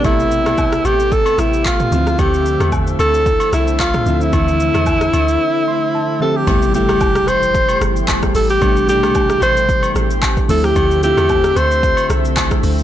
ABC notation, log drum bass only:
X:1
M:4/4
L:1/16
Q:"Swing 16ths" 1/4=112
K:Am
V:1 name="Log drum bass" clef=bass
A,,,3 C,,3 A,,,3 z A,,,4 D,,2 | D,,3 E,,3 D,,3 z C,,4 D,,2 | D,,3 E,,3 D,,2 z8 | A,,,3 C,,3 A,,,3 z G,,,4 A,,,2 |
A,,,3 C,,3 A,,,3 z A,,,4 D,,2 | D,,3 E,,3 D,,3 z C,,4 D,,2 |]